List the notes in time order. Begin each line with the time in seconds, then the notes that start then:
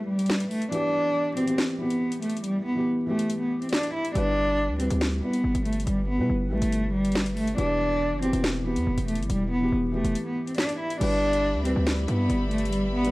Already playing: G3 E4 B4
0.08 G3
0.19 closed hi-hat
0.26 snare, closed hi-hat
0.33 closed hi-hat
0.40 closed hi-hat
0.51 A3, open hi-hat
0.62 closed hi-hat
0.71 E3 B3 D4 G4, closed hi-hat
1.35 E3 B3 C4 G4, closed hi-hat
1.46 E3 B3 G4, closed hi-hat
1.58 snare, closed hi-hat
1.78 E3 B3 G4
1.90 closed hi-hat
2.12 closed hi-hat
2.22 A3, closed hi-hat
2.30 closed hi-hat
2.37 closed hi-hat
2.44 G3, closed hi-hat
2.65 B3
2.75 E3 B3 G4
3.06 E3 A3 B3 G4
3.19 closed hi-hat
3.30 closed hi-hat
3.40 B3
3.62 C4, closed hi-hat
3.69 D4, snare, closed hi-hat
3.76 closed hi-hat
3.83 closed hi-hat
3.94 E4
4.05 closed hi-hat
4.14 G1 G3 D4 E4 B4, closed hi-hat
4.69 D2
4.78 G3 C4 E4 B4, closed hi-hat
4.89 D2 G3 E4 B4, closed hi-hat
5.01 snare, closed hi-hat
5.21 G3 B3 E4 B4
5.33 closed hi-hat
5.44 G1
5.55 G1, closed hi-hat
5.65 A3, closed hi-hat
5.73 closed hi-hat
5.80 closed hi-hat
5.87 G1 G3, closed hi-hat
6.08 B3
6.17 B2 G3 E4 B4
6.30 G1
6.49 A1 G3 A3 E4 B4
6.62 G1, closed hi-hat
6.72 closed hi-hat
6.94 G3
7.05 closed hi-hat
7.12 snare, closed hi-hat
7.19 closed hi-hat
7.26 closed hi-hat
7.37 A3, open hi-hat
7.47 closed hi-hat
7.57 E1 E3 B3 D4 G4, closed hi-hat
8.12 F#1
8.21 E3 B3 C4 G4, closed hi-hat
8.31 E1 E3 B3, closed hi-hat
8.44 snare, closed hi-hat
8.64 E3 B3 G4
8.76 E2, closed hi-hat
8.87 E1
8.97 E1, closed hi-hat
9.08 A3, closed hi-hat
9.15 G1, closed hi-hat
9.22 closed hi-hat
9.30 E1 G3, closed hi-hat
9.51 B3
9.60 E3 B3 G4
9.72 E1
9.92 E3 A3 B3 G4
10.04 E1, closed hi-hat
10.15 closed hi-hat
10.26 B3
10.47 C4, closed hi-hat
10.54 D4, snare, closed hi-hat
10.62 closed hi-hat
10.69 closed hi-hat
10.79 E4
10.90 closed hi-hat
10.99 G1 G3 D4 E4 G4 B4 D5 E5 B5, closed hi-hat, crash
11.33 closed hi-hat
11.55 D2
11.64 G3 C4 E4 B4, closed hi-hat
11.74 D2 G3 E4 B4
11.87 snare, closed hi-hat
12.06 G2 G3 B3 E4 B4, closed hi-hat
12.30 G1, closed hi-hat
12.51 A3, closed hi-hat
12.58 closed hi-hat
12.65 closed hi-hat
12.72 G3, closed hi-hat
12.94 B3
13.03 G3 E4 B4, closed hi-hat